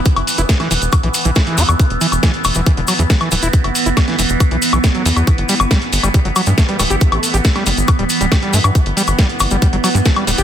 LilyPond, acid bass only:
\new Staff \with { instrumentName = "Acid bass" } { \clef bass \time 4/4 \key e \minor \tempo 4 = 138 r8. e'16 r16 e16 e16 r8 e16 r16 e16 e'16 e16 fis'16 r16 | r8 e16 r16 e16 r8 e16 e16 d16 fis16 e16 fis16 e16 e16 e'16 | r8. e'16 r16 e16 e16 r8 e16 r16 e16 g16 fis16 e16 r16 | r8 g16 r16 g16 r8 g16 g16 fis16 fis16 g16 a16 g16 g16 g'16 |
r8. g'16 r16 g16 g16 r8 g16 r16 g16 g'16 g16 a16 r16 | r8 g16 r16 g16 r8 g16 g16 fis16 fis16 g16 a16 g16 g16 g'16 | }